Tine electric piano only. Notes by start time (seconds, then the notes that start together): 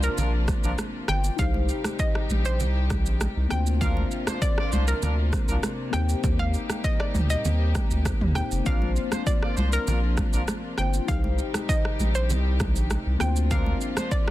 Already playing: A#3 C4 D4 F4 C5
1.36 D#4 G4
1.41 C5
3.49 A#3 C4 D4 F4
3.54 C5
5.91 A#3 C4 D#4 G4
5.96 C5
8.35 A#3 C4 D#4 G4 C5
8.64 A#3 C4 D4 F4
10.77 A#3 C4 D4 F4 C5
11.06 D#4 G4
11.11 B4
11.18 C5
13.18 A#3 C4 D4 F4
13.23 C5